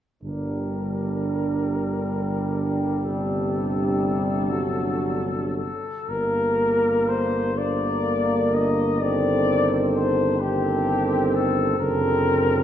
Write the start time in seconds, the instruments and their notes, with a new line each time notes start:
0.22 tuba G1, trombone D3, trombone section G3, french horn section D4, cornet A#4
3.04 trombone C3, cornet A4
4.49 trombone section F#3
5.57 cornet A4
6.09 tuba G1, trombone D3, trombone section A#3, cornet A#4, french horn section A#4
7.09 cornet C5
7.56 trombone D3, trombone section A#3, french horn section A#4, cornet D5
8.54 cornet D#5
9.01 trombone D#3, trombone section C4, french horn section A4, cornet D5
9.94 cornet C5
10.40 trombone D#3, trombone section C4, cornet G4, french horn section A4
11.35 cornet A4
11.79 tuba F#1, trombone D3, trombone section C4, french horn section A4, cornet A#4